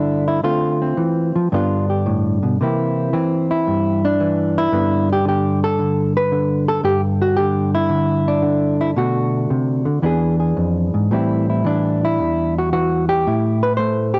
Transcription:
0.00 0.41 G2 medium
0.00 0.42 D3 medium
0.00 0.42 B3 soft
0.00 0.44 D4 medium
0.00 0.26 E4 loud
0.28 0.44 E4 medium
0.43 0.96 D3 medium
0.43 1.48 A3 soft
0.43 0.81 C4 soft
0.43 1.50 F4 medium
0.82 1.49 C4 soft
0.97 1.34 E3 medium
1.36 1.51 F3 medium
1.52 2.58 G2 medium
1.52 2.60 D3 soft
1.52 2.58 B3 medium
1.52 2.59 D4 medium
1.52 1.90 F4 medium
1.90 2.63 G4 soft
2.06 2.43 A2 medium
2.43 2.59 B2 soft
2.61 3.14 C3 medium
2.61 3.12 E3 soft
2.61 4.73 A#3 soft
2.61 3.12 C4 soft
2.61 3.50 E4 soft
3.13 4.19 E3 medium
3.13 4.04 C4 medium
3.51 4.57 E4 medium
3.67 4.71 G2 medium
4.05 4.73 D4 medium
4.20 4.71 E3 medium
4.58 5.10 E4 loud
4.72 6.81 G2 medium
4.72 5.24 D3 soft
4.72 8.24 B3 soft
4.72 7.21 D4 soft
5.12 5.27 G4 medium
5.25 5.77 D3 medium
5.25 5.63 G4 medium
5.64 6.16 A4 medium
5.79 6.31 D3 medium
6.17 6.68 B4 loud
6.32 7.37 D3 medium
6.68 6.84 A4 loud
6.83 8.93 G2 medium
6.83 7.01 G4 medium
7.21 7.37 F#4 medium
7.36 7.88 D3 medium
7.36 7.73 G4 medium
7.75 8.80 E4 medium
7.89 8.41 D3 medium
8.28 8.96 D4 medium
8.42 8.95 D3 medium
8.81 8.90 E4 medium
8.96 9.49 B2 medium
8.96 9.84 D3 soft
8.96 10.01 A3 soft
8.96 10.02 D4 soft
8.96 10.03 F#4 medium
9.50 9.86 C3 medium
9.86 10.02 D3 medium
10.02 10.56 E2 medium
10.02 11.12 E3 medium
10.02 11.10 B3 medium
10.02 11.10 D4 soft
10.02 10.39 G#4 medium
10.40 11.09 G#4 soft
10.57 10.94 F2 medium
10.94 11.11 G#2 soft
11.11 12.19 A2 medium
11.11 11.64 E3 soft
11.11 14.20 G3 soft
11.11 11.66 C4 soft
11.11 11.49 E4 soft
11.50 12.04 E4 soft
11.64 12.72 E3 medium
11.64 12.56 D4 medium
12.05 12.57 E4 medium
12.19 13.26 E2 medium
12.58 12.72 F#4 medium
12.73 13.24 E3 medium
12.73 13.08 F#4 medium
13.09 13.62 G4 loud
13.27 14.20 A2 medium
13.27 14.14 E4 soft
13.63 13.77 B4 loud
13.77 14.20 A3 medium
13.77 14.20 C5 medium
14.14 14.20 G4 medium

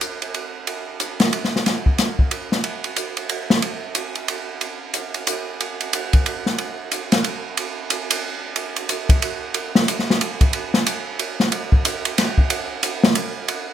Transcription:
0.01 hi-hat pedal soft
0.01 ride soft
0.22 ride soft
0.34 ride soft
0.67 ride soft
1.00 hi-hat pedal soft
1.00 ride soft
1.20 snare soft
1.20 ride soft
1.33 ride soft
1.45 snare soft
1.56 snare soft
1.66 snare soft
1.66 ride soft
1.86 kick soft
1.98 snare soft
1.98 hi-hat pedal soft
1.98 ride soft
2.19 kick soft
2.31 ride soft
2.52 snare soft
2.64 ride soft
2.84 ride soft
2.96 hi-hat pedal soft
2.96 ride soft
3.17 ride soft
3.29 ride soft
3.50 snare soft
3.62 ride soft
3.95 hi-hat pedal soft
3.95 ride medium
4.15 ride soft
4.28 ride soft
4.61 ride soft
4.94 hi-hat pedal soft
4.94 ride soft
5.14 ride soft
5.27 hi-hat pedal medium
5.27 ride medium
5.60 ride soft
5.81 ride soft
5.93 hi-hat pedal soft
5.93 ride medium
6.13 kick medium
6.13 ride soft
6.26 ride soft
6.46 snare soft
6.58 ride soft
6.91 hi-hat pedal soft
6.91 ride soft
7.12 snare soft
7.12 ride soft
7.24 ride soft
7.57 ride medium
7.90 hi-hat pedal soft
7.90 ride medium
8.10 ride medium
8.56 ride soft
8.76 ride soft
8.89 hi-hat pedal soft
8.89 ride medium
9.09 kick medium
9.09 ride soft
9.22 ride medium
9.54 ride medium
9.75 snare medium
9.88 hi-hat pedal medium
9.88 ride medium
9.99 snare soft
10.10 snare soft
10.21 ride medium
10.41 kick medium
10.41 ride soft
10.53 ride medium
10.74 snare soft
10.86 hi-hat pedal soft
10.86 ride medium
11.19 ride medium
11.40 snare soft
11.52 ride medium
11.72 kick medium
11.85 hi-hat pedal soft
11.85 ride medium
12.05 ride soft
12.18 snare soft
12.18 ride medium
12.38 kick soft
12.50 ride medium
12.83 hi-hat pedal soft
12.83 ride medium
13.04 snare medium
13.15 ride medium
13.48 ride medium

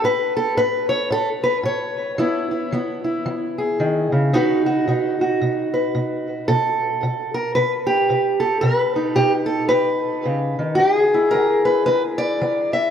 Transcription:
0.04 0.53 A2 medium
0.04 0.36 B4 loud
0.37 0.57 A4 medium
0.57 1.07 A2 medium
0.57 0.89 B4 loud
0.89 1.11 C#5 medium
1.10 1.60 A2 medium
1.10 1.28 A4 loud
1.44 1.56 B4 medium
1.63 2.14 A2 medium
1.63 3.26 C#5 medium
2.18 2.68 E3 medium
2.18 2.73 B3 medium
2.18 2.50 E4 medium
2.51 3.03 E4 soft
2.72 3.22 E3 medium
2.72 4.33 B3 soft
3.04 4.31 E4 soft
3.26 3.75 E3 medium
3.58 4.33 G#4 soft
3.80 4.12 D#3 medium
4.12 4.34 C#3 medium
4.33 4.83 B2 medium
4.33 4.88 D#4 medium
4.33 4.66 F#4 medium
4.33 5.73 B4 medium
4.66 5.21 F#4 medium
4.88 5.37 B2 medium
4.88 6.51 D#4 medium
5.21 7.86 F#4 medium
5.41 5.91 B2 medium
5.74 6.48 B4 medium
5.95 6.44 B2 medium
6.48 6.98 B2 medium
6.48 7.34 A4 medium
7.03 7.52 B2 medium
7.34 7.55 A#4 medium
7.55 8.06 B2 medium
7.55 7.71 B4 medium
7.87 8.41 G4 medium
8.10 8.60 B2 medium
8.40 8.61 A4 medium
8.61 9.13 B2 medium
8.61 9.46 B4 medium
8.96 10.77 D#4 soft
9.16 9.67 B2 medium
9.16 9.32 G4 medium
9.46 9.68 A4 medium
9.69 10.21 B2 medium
9.69 10.75 B4 loud
10.25 10.58 C#3 medium
10.59 10.80 D#3 medium
10.75 10.96 G4 medium
10.80 11.29 E3 medium
10.96 11.85 G#4 medium
11.14 12.90 E4 medium
11.31 11.84 E3 medium
11.31 11.65 A#4 medium
11.65 11.85 B4 medium
11.86 12.38 E3 medium
11.86 12.02 B4 loud
12.18 12.73 D5 loud
12.41 12.90 E3 medium
12.73 12.90 E5 medium

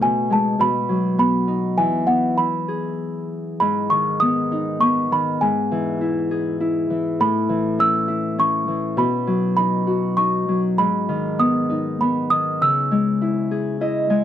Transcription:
0.00 0.58 B2 medium
0.00 0.36 A3 soft
0.00 0.32 G#5 medium
0.30 0.65 G#3 soft
0.30 0.62 A5 medium
0.59 1.82 B2 medium
0.59 1.18 B5 loud
0.89 1.82 F#3 soft
1.18 2.07 B3 medium
1.18 1.80 B5 medium
1.48 1.84 D#4 medium
1.78 3.65 E3 medium
1.78 2.05 G#5 medium
2.07 4.22 B3 soft
2.07 2.38 F#5 medium
2.37 3.98 E4 soft
2.37 3.26 B5 medium
2.68 4.96 G#4 soft
3.60 5.41 G#2 medium
3.60 3.91 B5 medium
3.90 5.10 D#3 soft
3.90 4.18 C#6 medium
4.20 4.81 B3 medium
4.20 4.83 D#6 loud
4.52 5.77 D#4 medium
4.81 7.92 B3 medium
4.81 5.12 C#6 medium
5.12 5.46 D#3 soft
5.12 5.43 B5 medium
5.41 7.24 G#2 medium
5.41 6.86 G#5 medium
5.71 6.89 E3 medium
6.01 6.60 E4 soft
6.31 7.26 G#4 medium
6.60 8.08 E4 medium
6.90 7.24 E3 medium
7.20 9.02 A2 medium
7.20 7.75 B5 medium
7.49 8.67 E3 medium
7.79 8.38 C#4 medium
7.79 8.34 E6 loud
8.08 9.63 E4 medium
8.38 11.28 C#4 soft
8.38 9.00 C#6 medium
8.68 9.02 E3 soft
8.97 10.83 B2 medium
8.97 9.55 B5 medium
9.27 10.47 F#3 medium
9.57 10.17 D#4 medium
9.57 10.19 B5 medium
9.87 12.31 F#4 soft
10.17 11.69 D#4 soft
10.17 10.60 C#6 medium
10.48 10.83 F#3 soft
10.78 12.65 G#2 medium
10.78 11.41 B5 medium
11.09 12.31 D#3 soft
11.39 12.01 B3 soft
11.39 12.02 D#6 medium
11.70 13.28 D#4 medium
12.01 14.24 B3 soft
12.01 12.32 B5 medium
12.30 12.65 D#3 soft
12.30 12.61 D#6 medium
12.61 14.24 C#3 medium
12.61 14.06 E6 medium
12.91 14.09 G#3 medium
13.22 13.80 E4 soft
13.51 14.24 G#4 medium
13.81 14.24 E4 medium
13.81 14.24 D#5 medium
14.10 14.24 G#3 medium
14.10 14.24 G#5 medium

